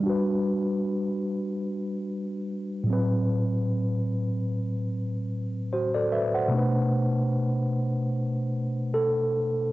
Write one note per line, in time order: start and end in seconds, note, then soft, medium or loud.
0.00 2.82 G3 medium
0.00 2.83 D4 medium
0.06 2.85 F#4 medium
0.06 2.87 B4 medium
2.84 6.06 A2 medium
2.84 6.08 F#3 medium
2.90 6.09 C4 medium
2.90 5.70 B4 medium
5.73 5.94 F#4 soft
5.73 5.94 C5 medium
5.94 6.12 A4 soft
5.94 6.11 D5 medium
6.12 6.34 B4 medium
6.12 6.34 E5 medium
6.34 6.74 C5 soft
6.34 6.73 F#5 medium
6.48 9.71 B2 medium
6.48 9.72 A3 medium
6.54 9.72 D4 medium
6.54 9.72 B4 medium
8.94 9.72 A4 medium